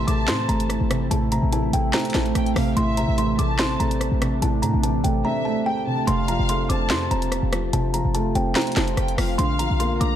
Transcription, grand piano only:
0, 0, Header, 1, 2, 480
1, 0, Start_track
1, 0, Tempo, 413793
1, 1289, Time_signature, 4, 2, 24, 8
1, 11782, End_track
2, 0, Start_track
2, 0, Title_t, "Grand piano"
2, 0, Program_c, 0, 0
2, 0, Control_c, 0, 64, 127
2, 0, Note_on_c, 0, 45, 99
2, 0, Note_on_c, 0, 48, 79
2, 0, Note_on_c, 0, 52, 97
2, 85, Note_on_c, 0, 57, 92
2, 323, Note_on_c, 0, 60, 91
2, 552, Note_off_c, 0, 57, 0
2, 568, Note_off_c, 0, 45, 0
2, 569, Note_on_c, 0, 57, 82
2, 808, Note_off_c, 0, 48, 0
2, 1047, Note_on_c, 0, 48, 88
2, 1050, Note_off_c, 0, 52, 0
2, 1291, Note_on_c, 0, 45, 98
2, 1509, Note_off_c, 0, 48, 0
2, 1526, Note_off_c, 0, 60, 0
2, 1527, Note_on_c, 0, 48, 82
2, 1766, Note_on_c, 0, 52, 82
2, 1769, Note_off_c, 0, 57, 0
2, 2006, Note_on_c, 0, 57, 89
2, 2253, Note_on_c, 0, 60, 106
2, 2467, Note_off_c, 0, 57, 0
2, 2485, Note_on_c, 0, 57, 94
2, 2490, Note_off_c, 0, 45, 0
2, 2728, Note_off_c, 0, 48, 0
2, 2967, Note_off_c, 0, 52, 0
2, 2969, Note_on_c, 0, 48, 85
2, 3210, Note_on_c, 0, 45, 102
2, 3430, Note_off_c, 0, 48, 0
2, 3448, Note_on_c, 0, 48, 84
2, 3451, Note_off_c, 0, 60, 0
2, 3684, Note_on_c, 0, 52, 93
2, 3687, Note_off_c, 0, 57, 0
2, 3929, Note_on_c, 0, 57, 82
2, 4167, Note_on_c, 0, 60, 103
2, 4392, Note_off_c, 0, 57, 0
2, 4409, Note_off_c, 0, 45, 0
2, 4409, Note_on_c, 0, 57, 80
2, 4648, Note_off_c, 0, 48, 0
2, 4887, Note_off_c, 0, 52, 0
2, 4888, Note_on_c, 0, 48, 86
2, 5131, Note_on_c, 0, 45, 98
2, 5351, Note_off_c, 0, 48, 0
2, 5368, Note_off_c, 0, 60, 0
2, 5368, Note_on_c, 0, 48, 80
2, 5609, Note_off_c, 0, 57, 0
2, 5609, Note_on_c, 0, 52, 86
2, 5854, Note_on_c, 0, 57, 87
2, 6089, Note_on_c, 0, 60, 96
2, 6314, Note_off_c, 0, 57, 0
2, 6330, Note_off_c, 0, 45, 0
2, 6331, Note_on_c, 0, 57, 85
2, 6569, Note_off_c, 0, 48, 0
2, 6809, Note_off_c, 0, 52, 0
2, 6810, Note_on_c, 0, 48, 87
2, 7035, Note_off_c, 0, 48, 0
2, 7049, Note_off_c, 0, 60, 0
2, 7050, Note_off_c, 0, 57, 0
2, 7053, Note_on_c, 0, 48, 93
2, 7067, Control_c, 0, 64, 0
2, 7282, Control_c, 0, 64, 127
2, 7290, Note_on_c, 0, 53, 82
2, 7528, Note_on_c, 0, 57, 84
2, 7766, Note_on_c, 0, 60, 90
2, 8233, Note_off_c, 0, 60, 0
2, 8251, Note_off_c, 0, 48, 0
2, 8251, Note_on_c, 0, 60, 88
2, 8489, Note_off_c, 0, 53, 0
2, 8727, Note_on_c, 0, 53, 79
2, 8729, Note_off_c, 0, 57, 0
2, 8970, Note_on_c, 0, 48, 98
2, 9190, Note_off_c, 0, 53, 0
2, 9207, Note_on_c, 0, 53, 79
2, 9450, Note_off_c, 0, 60, 0
2, 9452, Note_on_c, 0, 57, 95
2, 9690, Note_on_c, 0, 60, 86
2, 9929, Note_on_c, 0, 72, 103
2, 10154, Note_off_c, 0, 60, 0
2, 10169, Note_off_c, 0, 48, 0
2, 10171, Note_on_c, 0, 60, 83
2, 10408, Note_off_c, 0, 53, 0
2, 10648, Note_on_c, 0, 53, 83
2, 10650, Note_off_c, 0, 57, 0
2, 10888, Note_off_c, 0, 53, 0
2, 10889, Note_off_c, 0, 72, 0
2, 10890, Note_off_c, 0, 60, 0
2, 10893, Note_on_c, 0, 50, 100
2, 10901, Control_c, 0, 64, 0
2, 11129, Note_on_c, 0, 53, 83
2, 11137, Control_c, 0, 64, 127
2, 11368, Note_on_c, 0, 58, 93
2, 11606, Note_on_c, 0, 62, 85
2, 11782, Note_off_c, 0, 50, 0
2, 11782, Note_off_c, 0, 53, 0
2, 11782, Note_off_c, 0, 58, 0
2, 11782, Note_off_c, 0, 62, 0
2, 11782, End_track
0, 0, End_of_file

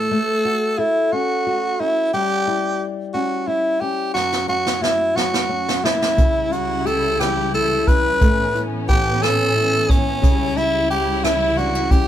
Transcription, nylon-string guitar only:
0, 0, Header, 1, 2, 480
1, 0, Start_track
1, 0, Tempo, 674916
1, 80, Time_signature, 6, 3, 24, 8
1, 8590, End_track
2, 0, Start_track
2, 0, Title_t, "Nylon-string guitar"
2, 0, Program_c, 0, 24
2, 0, Note_on_c, 0, 45, 65
2, 0, Note_on_c, 0, 52, 55
2, 0, Note_on_c, 0, 57, 53
2, 0, Note_on_c, 0, 64, 48
2, 0, Note_on_c, 0, 69, 50
2, 72, Note_off_c, 0, 57, 0
2, 78, Note_off_c, 0, 52, 0
2, 79, Note_off_c, 0, 45, 0
2, 81, Note_on_c, 0, 57, 65
2, 126, Note_off_c, 0, 64, 0
2, 127, Note_off_c, 0, 69, 0
2, 321, Note_on_c, 0, 66, 50
2, 559, Note_on_c, 0, 69, 59
2, 802, Note_on_c, 0, 61, 61
2, 1035, Note_off_c, 0, 66, 0
2, 1043, Note_on_c, 0, 66, 53
2, 1280, Note_off_c, 0, 61, 0
2, 1283, Note_on_c, 0, 61, 54
2, 1516, Note_off_c, 0, 57, 0
2, 1519, Note_on_c, 0, 55, 74
2, 1564, Note_off_c, 0, 69, 0
2, 1567, Note_off_c, 0, 66, 0
2, 1760, Note_on_c, 0, 64, 53
2, 2234, Note_off_c, 0, 61, 0
2, 2237, Note_on_c, 0, 61, 58
2, 2463, Note_off_c, 0, 64, 0
2, 2472, Note_on_c, 0, 64, 52
2, 2711, Note_off_c, 0, 61, 0
2, 2713, Note_on_c, 0, 61, 52
2, 2949, Note_on_c, 0, 42, 71
2, 2952, Note_off_c, 0, 55, 0
2, 2999, Note_off_c, 0, 64, 0
2, 3187, Note_off_c, 0, 61, 0
2, 3187, Note_on_c, 0, 61, 53
2, 3423, Note_on_c, 0, 66, 54
2, 3666, Note_on_c, 0, 54, 57
2, 3905, Note_off_c, 0, 61, 0
2, 3908, Note_on_c, 0, 61, 51
2, 4151, Note_on_c, 0, 58, 51
2, 4387, Note_on_c, 0, 49, 69
2, 4399, Note_off_c, 0, 42, 0
2, 4444, Note_off_c, 0, 66, 0
2, 4445, Note_off_c, 0, 54, 0
2, 4445, Note_off_c, 0, 58, 0
2, 4630, Note_off_c, 0, 61, 0
2, 4633, Note_on_c, 0, 64, 54
2, 4875, Note_on_c, 0, 67, 57
2, 5119, Note_on_c, 0, 52, 56
2, 5360, Note_off_c, 0, 64, 0
2, 5363, Note_on_c, 0, 64, 50
2, 5606, Note_on_c, 0, 61, 53
2, 5836, Note_off_c, 0, 52, 0
2, 5837, Note_off_c, 0, 49, 0
2, 5839, Note_on_c, 0, 57, 73
2, 5888, Note_off_c, 0, 67, 0
2, 6075, Note_off_c, 0, 64, 0
2, 6078, Note_on_c, 0, 64, 52
2, 6321, Note_on_c, 0, 71, 61
2, 6342, Note_off_c, 0, 61, 0
2, 6557, Note_on_c, 0, 61, 63
2, 6794, Note_off_c, 0, 64, 0
2, 6797, Note_on_c, 0, 64, 59
2, 7035, Note_off_c, 0, 61, 0
2, 7038, Note_on_c, 0, 61, 58
2, 7269, Note_on_c, 0, 49, 77
2, 7274, Note_off_c, 0, 57, 0
2, 7323, Note_off_c, 0, 64, 0
2, 7324, Note_off_c, 0, 71, 0
2, 7511, Note_on_c, 0, 64, 56
2, 7994, Note_on_c, 0, 52, 64
2, 8230, Note_off_c, 0, 64, 0
2, 8233, Note_on_c, 0, 62, 58
2, 8255, Note_off_c, 0, 61, 0
2, 8357, Note_off_c, 0, 62, 0
2, 8357, Note_on_c, 0, 64, 50
2, 8472, Note_on_c, 0, 61, 60
2, 8590, Note_off_c, 0, 49, 0
2, 8590, Note_off_c, 0, 52, 0
2, 8590, Note_off_c, 0, 61, 0
2, 8590, Note_off_c, 0, 64, 0
2, 8590, End_track
0, 0, End_of_file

